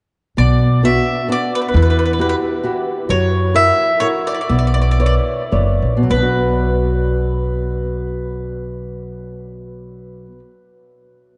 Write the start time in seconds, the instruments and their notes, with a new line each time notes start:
0.37 upright bass B1, nylon-string guitar B2, mandolin D5
0.83 nylon-string guitar B3 D4 F#4, mandolin E5
1.28 nylon-string guitar B3 D4 F#4, mandolin D5
1.55 mandolin B4
1.62 mandolin B4
1.68 mandolin B4
1.74 upright bass E2, nylon-string guitar E3, mandolin B4
1.82 mandolin B4
1.90 mandolin B4
1.99 mandolin B4
2.06 mandolin B4
2.13 mandolin B4
2.19 nylon-string guitar E4 F#4 G4, mandolin B4
2.29 mandolin B4
2.64 nylon-string guitar E4 F#4 G4
3.09 upright bass F#2, nylon-string guitar F#3, mandolin C#5
3.54 nylon-string guitar E4 F#4 A#4, mandolin E5
4.00 nylon-string guitar E4 F#4 A#4, mandolin C#5
4.27 mandolin D5
4.34 mandolin D5
4.41 mandolin D5
4.49 upright bass B1, nylon-string guitar B3, mandolin D5
4.59 mandolin D5
4.67 mandolin D5
4.74 mandolin D5
4.82 mandolin D5
4.91 mandolin D5
5.00 nylon-string guitar B4 C#5 D5, mandolin D5
5.06 mandolin D5
5.52 upright bass F#1, nylon-string guitar B4 C#5 D5
5.82 upright bass A#1
5.97 nylon-string guitar B2
6.03 nylon-string guitar F#3
6.10 upright bass B1, nylon-string guitar B3, mandolin B4
6.16 nylon-string guitar D4
6.22 nylon-string guitar F#4